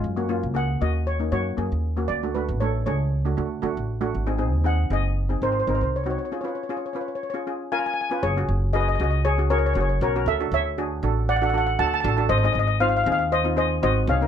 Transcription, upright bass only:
0.04 0.45 F#2 medium
0.43 0.78 C#2 medium
0.81 1.28 D#2 medium
1.32 1.56 F#2 medium
1.58 1.70 F#2 medium
1.72 2.06 D#2 medium
2.09 2.50 D2 medium
2.49 2.83 A1 medium
2.87 3.33 C#2 medium
3.38 3.61 D2 medium
3.63 3.75 D2 medium
3.77 4.11 A1 medium
4.15 4.53 G#1 medium
4.53 4.88 D#2 medium
4.90 5.37 F#1 medium
5.42 5.65 G#1 medium
5.67 5.79 G#1 medium
5.81 6.16 C2 medium
8.23 8.46 F#1 medium
8.49 8.95 F#1 medium
9.00 9.72 C#2 medium
9.75 9.99 F#1 medium
10.01 10.25 B1 loud
10.26 10.50 D2 medium
10.52 10.99 D2 medium
11.03 11.75 A1 medium
11.79 12.03 D2 loud
12.04 12.28 A1 loud
12.29 12.53 G#1 loud
12.55 13.02 G#1 medium
13.06 13.79 D#2 loud
13.83 14.06 G#1 loud
14.07 14.28 C2 loud

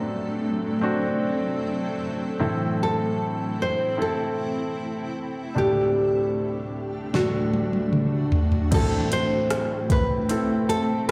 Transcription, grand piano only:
0.00 2.36 F#2 soft
0.00 2.36 F#3 soft
0.00 0.74 C4 medium
0.00 0.75 D4 medium
0.00 0.75 F#4 medium
0.81 2.32 C4 medium
0.81 2.32 D4 medium
0.81 2.33 F#4 medium
2.40 5.52 A2 medium
2.40 5.52 E3 medium
2.40 3.90 C4 medium
2.40 3.90 E4 medium
2.40 3.91 A4 medium
3.97 5.48 C4 medium
3.97 5.48 E4 soft
3.97 5.49 A4 medium
5.55 7.10 D2 soft
5.55 7.10 A2 soft
5.55 7.05 D4 medium
5.55 7.06 G4 medium
5.55 7.06 A4 medium
7.13 8.68 D2 soft
7.13 8.68 A2 soft
7.13 8.64 D4 medium
7.13 8.64 F#4 medium
7.13 8.64 A4 medium
8.71 11.11 A2 soft
8.71 11.11 E3 soft
8.71 10.21 C4 medium
8.71 10.22 E4 medium
8.71 10.22 A4 medium
10.29 11.11 C4 medium
10.29 11.11 E4 soft
10.29 11.11 A4 medium

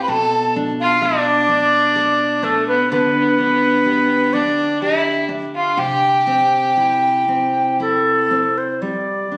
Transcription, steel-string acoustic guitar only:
0.00 0.18 C4 medium
0.08 2.91 B2 medium
0.56 1.48 D4 medium
1.02 1.95 A4 medium
1.49 2.42 D4 medium
1.96 3.85 A4 medium
2.43 3.38 D4 medium
2.92 5.79 D3 medium
3.38 4.33 D4 medium
3.86 4.82 G4 medium
4.34 5.27 D4 medium
4.82 6.77 G4 medium
5.29 5.88 D4 medium
5.77 8.82 C3 medium
6.27 7.27 C4 medium
6.77 7.79 E4 medium
7.28 8.30 C4 medium
7.80 8.92 E4 medium
8.31 8.91 C4 medium
8.82 9.37 G3 medium
9.32 9.37 D4 soft

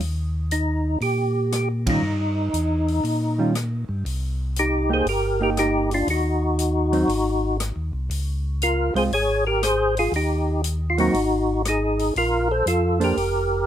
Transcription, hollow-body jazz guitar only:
1.86 2.01 D#3 soft
1.86 2.01 G3 soft
1.86 2.01 C#4 soft
1.86 2.02 F4 soft
3.38 3.53 D#3 medium
3.38 3.53 G3 medium
3.38 3.54 C#4 medium
3.38 3.54 F4 medium
4.90 5.05 A#3 medium
4.90 5.05 D#4 medium
4.90 5.05 G4 medium
5.41 6.05 A#3 medium
5.41 6.05 D#4 medium
5.41 6.05 G4 medium
6.92 7.07 F#3 medium
6.92 7.08 C4 medium
6.92 7.08 D#4 medium
8.95 9.10 G#3 medium
8.95 9.10 C4 medium
8.95 9.11 F4 medium
10.98 11.13 F#3 medium
10.98 11.13 A#3 medium
10.98 11.13 C4 medium
13.00 13.15 A#3 medium
13.00 13.15 D4 medium
13.00 13.16 A4 medium
13.00 13.16 C5 medium

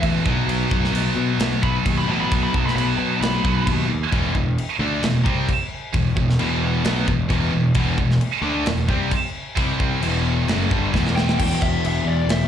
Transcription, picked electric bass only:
0.02 0.18 A1 loud
0.26 0.41 B1 loud
0.47 0.63 B1 loud
0.71 0.86 B1 loud
0.93 1.08 B1 medium
1.16 1.31 B2 medium
1.39 1.54 B1 loud
1.63 1.78 B1 loud
1.85 2.00 D#2 loud
2.08 2.23 A1 loud
2.31 2.46 B1 loud
2.54 2.69 B1 medium
2.76 2.91 B1 loud
2.98 3.13 B2 medium
3.21 3.36 B1 medium
3.44 3.59 B1 loud
3.66 3.81 D#2 loud
3.88 4.04 D#2 medium
4.12 4.33 E1 medium
4.35 4.56 E1 medium
4.79 5.00 D2 loud
5.00 5.23 E1 medium
5.25 5.47 C2 medium
5.94 6.15 E1 medium
6.16 6.37 E1 medium
6.38 6.81 E1 medium
6.84 7.05 B1 medium
7.07 7.28 E1 medium
7.30 7.51 E1 medium
7.52 7.74 E1 medium
7.74 7.96 E1 loud
7.97 8.19 E1 medium
8.42 8.64 D2 loud
8.65 8.87 E1 medium
8.88 9.10 C2 loud
9.57 9.99 C2 loud
10.01 10.44 E1 loud
10.47 10.69 F#1 loud
10.71 10.92 G1 loud
10.93 11.36 E1 loud
11.39 11.54 E1 medium
11.62 11.77 E1 loud
11.83 11.98 E1 loud
12.05 12.21 E2 loud
12.27 12.43 E1 loud

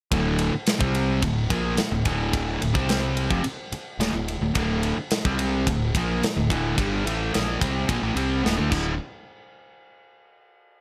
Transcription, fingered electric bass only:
0.13 0.51 D1 loud
0.55 muted fingered electric bass stroke soft
0.81 1.20 C2 loud
1.23 1.49 D1 medium
1.50 1.76 A#1 loud
1.79 muted fingered electric bass stroke soft
1.92 2.05 D1 medium
2.06 2.58 D1 medium
2.63 2.75 D1 medium
2.76 3.27 C2 loud
3.30 3.43 F1 medium
3.45 muted fingered electric bass stroke soft
3.72 muted fingered electric bass stroke soft
3.99 4.12 D1 loud
4.13 4.39 D1 medium
4.41 4.54 D1 medium
4.56 4.94 D1 medium
4.97 muted fingered electric bass stroke soft
5.26 5.64 C2 loud
5.67 5.93 D1 medium
5.95 6.20 A#1 loud
6.23 muted fingered electric bass stroke soft
6.37 6.49 D1 medium
6.51 6.76 D1 loud
6.78 7.04 G1 medium
7.06 7.32 A1 loud
7.35 7.60 A#1 loud
7.62 7.87 C2 loud
7.89 8.01 A#1 medium
8.02 8.15 A1 medium
8.16 8.42 C2 medium
8.45 8.57 D1 loud
8.59 8.71 D2 medium
8.72 8.98 D1 loud

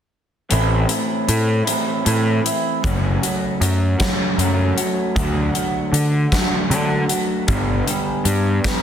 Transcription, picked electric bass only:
0.52 0.84 A1 medium
1.29 1.61 A2 medium
2.06 2.39 A2 medium
2.84 3.17 F#1 medium
3.61 3.94 F#2 medium
4.38 4.71 F#2 medium
5.16 5.49 D2 medium
5.92 6.26 D3 medium
6.70 7.03 D3 medium
7.48 7.81 G1 loud
8.25 8.58 G2 medium

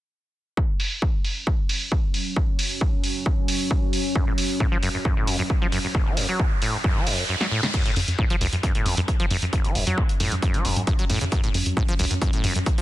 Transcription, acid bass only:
4.16 4.25 F#2 medium
4.27 4.33 A2 medium
4.60 4.67 A2 loud
4.72 4.78 F3 loud
4.83 4.89 F#2 loud
4.94 4.98 F#2 medium
5.05 5.15 F#2 medium
5.17 5.29 A2 medium
5.28 5.37 F2 loud
5.39 5.43 F#2 loud
5.62 5.68 F3 loud
5.72 5.79 F#2 loud
5.84 5.88 F#2 medium
5.95 6.08 F#1 medium
6.06 6.19 F#3 medium
6.17 6.27 F2 loud
6.29 6.41 F#3 medium
6.40 6.46 F#2 medium
6.62 6.75 A2 medium
6.74 6.77 F#2 medium
6.84 6.98 F#2 medium
6.96 7.08 F#3 medium
7.07 7.20 F2 loud
7.18 7.24 F#2 medium
7.29 7.35 F#2 medium
7.41 7.47 F#3 medium
7.51 7.61 A2 loud
7.63 7.67 C#3 loud
7.74 7.83 F#2 medium
7.86 7.91 A2 medium
8.19 8.25 A2 loud
8.30 8.36 F3 loud
8.41 8.47 F#2 loud
8.53 8.56 F#2 medium
8.63 8.73 F#2 medium
8.75 8.87 A2 medium
8.86 8.95 F2 loud
8.97 9.01 F#2 loud
9.20 9.26 F3 loud
9.31 9.37 F#2 loud
9.42 9.46 F#2 medium
9.53 9.66 F#1 medium
9.65 9.77 F#3 medium
9.75 9.85 F2 loud
9.87 9.99 F#3 medium
9.98 10.04 F#2 medium
10.20 10.33 A2 medium
10.32 10.35 F#2 medium
10.42 10.56 F#2 medium
10.54 10.66 F#3 medium
10.65 10.78 F2 loud
10.77 10.82 F#2 medium
10.87 10.94 F#2 medium
10.99 11.05 F#3 medium
11.10 11.19 A2 loud
11.21 11.25 C#3 loud
11.32 11.42 F#2 medium
11.44 11.50 A2 medium
11.77 11.83 A2 loud
11.88 11.94 F3 loud
11.99 12.06 F#2 loud
12.11 12.14 F#2 medium
12.22 12.31 F#2 medium
12.33 12.45 A2 medium
12.44 12.54 F2 loud
12.56 12.59 F#2 loud
12.78 12.82 F3 loud

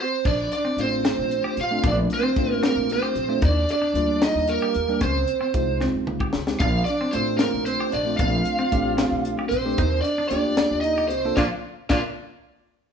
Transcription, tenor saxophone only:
0.03 0.26 C4 medium
0.30 0.53 D4 medium
0.57 0.79 D4 medium
0.83 1.56 C4 medium
1.62 1.85 F4 medium
1.91 2.01 D4 medium
2.18 2.64 C4 medium
2.68 2.90 A#3 medium
2.94 3.41 C4 medium
3.48 3.70 D4 medium
3.72 4.20 D4 medium
4.24 4.48 D#4 medium
4.50 4.99 A#3 medium
5.03 5.78 C4 medium
6.62 6.86 F4 medium
6.89 7.13 D4 medium
7.16 7.39 C4 medium
7.41 7.65 A#3 medium
7.66 7.91 C4 medium
7.91 8.17 D4 medium
8.20 9.48 F4 medium
9.48 9.99 C4 medium
10.03 10.29 D4 medium
10.30 10.80 D4 medium
10.84 11.09 D#4 medium
11.10 11.35 C4 medium
11.38 11.44 D4 loud
11.90 11.97 D4 medium

